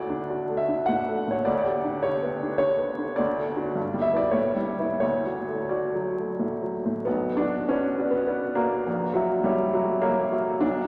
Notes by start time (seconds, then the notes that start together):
Already playing: D2 F#4 D5
0.10 D4
0.30 F#4
0.49 A3
0.57 E5
0.69 D4
0.86 A2 F#5
1.09 A3
1.27 A2 C#5
1.45 D2 D5
1.53 C#5
1.58 D5
1.66 G4
1.84 D4
2.03 G4 C#5
2.23 B3
2.43 D4
2.58 D3 C#5
2.79 B3
2.98 D3
3.16 D2 D5
3.37 A3
3.56 D4 F#4
3.75 G2
3.94 G3
4.02 E5
4.13 B3 E4 D5
4.31 A2 C#5
4.56 G3
4.79 B3 E4
5.00 D2 C#5
5.26 F#4
5.48 A3
5.69 F#4 D5
5.94 F#3
6.18 A3
6.39 A2
6.62 F#3
6.85 A2
7.05 B1 B3
7.37 D4 F#4 D5
7.69 C#4 B4 D5
7.99 F#4 D5
8.11 B3
8.27 B4 D5
8.55 A#3 F#4 D5
8.87 A#1
9.14 F#3 F#4 E5
9.44 G3 C#5 E5
9.73 F#3 F#4 E5
10.02 A#3 C#5 E5
10.32 F#4 E5
10.60 B1 D4